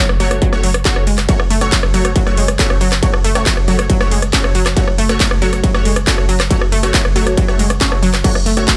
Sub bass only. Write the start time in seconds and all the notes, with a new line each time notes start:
0.09 F#1
0.20 F#1
0.31 F#1
0.53 F#1
0.63 F#1
0.74 F#1
0.96 F#1
1.07 F#1
1.18 F#1
1.40 F#1
1.50 F#1
1.61 F#1
1.83 F#1
1.94 F#1
2.05 F#1
2.27 F#1
2.37 F#1
2.48 F#1
2.70 F#1
2.81 F#1
2.92 F#1
3.13 F#1
3.24 F#1
3.35 F#1
3.57 F#1
3.68 F#1
3.79 F#1
4.00 F#1
4.11 F#1
4.22 F#1
4.44 F#1
4.55 F#1
4.66 F#1
4.88 F#1
4.98 F#1
5.09 F#1
5.31 F#1
5.42 F#1
5.53 F#1
5.74 F#1
5.85 F#1
5.96 F#1
6.18 F#1
6.29 F#1
6.40 F#1
6.61 F#1
6.72 F#1
6.83 F#1
7.05 F#1
7.16 F#1
7.27 F#1
7.48 F#1
7.59 F#1
7.70 F#1
7.92 F#1
8.03 F#1
8.13 F#1
8.35 F#1
8.46 F#1
8.57 F#1